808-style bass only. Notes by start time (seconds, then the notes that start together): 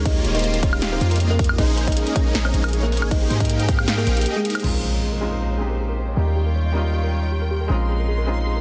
Already playing: D#2
0.25 D#1
1.01 F2
1.58 A#1
2.35 A#1
2.54 A#1
3.02 G#1
3.30 G#2
4.07 A#1
4.64 A#1
6.17 D#2
7.70 A#1